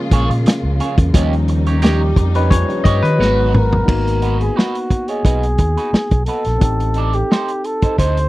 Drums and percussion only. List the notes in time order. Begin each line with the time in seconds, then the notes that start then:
0.11 kick, closed hi-hat
0.31 closed hi-hat
0.46 snare, closed hi-hat
0.80 closed hi-hat
0.98 kick, closed hi-hat
1.14 kick, closed hi-hat
1.33 closed hi-hat
1.48 closed hi-hat
1.66 closed hi-hat
1.82 snare, closed hi-hat
2.16 kick, closed hi-hat
2.35 closed hi-hat
2.51 kick, closed hi-hat
2.70 closed hi-hat
2.85 kick, closed hi-hat
3.05 closed hi-hat
3.22 snare
3.54 mid tom
3.73 floor tom
3.88 kick, crash
4.07 closed hi-hat
4.22 closed hi-hat
4.41 closed hi-hat
4.59 snare
4.75 closed hi-hat
4.90 kick, closed hi-hat
5.08 closed hi-hat
5.25 kick, closed hi-hat
5.43 closed hi-hat
5.58 kick, closed hi-hat
5.77 closed hi-hat
5.94 snare
6.11 kick, closed hi-hat
6.26 closed hi-hat
6.45 snare, closed hi-hat
6.61 kick, closed hi-hat
6.80 closed hi-hat
6.94 closed hi-hat
7.13 closed hi-hat
7.32 snare
7.48 closed hi-hat
7.64 closed hi-hat
7.82 kick, closed hi-hat
7.98 kick, closed hi-hat
8.17 closed hi-hat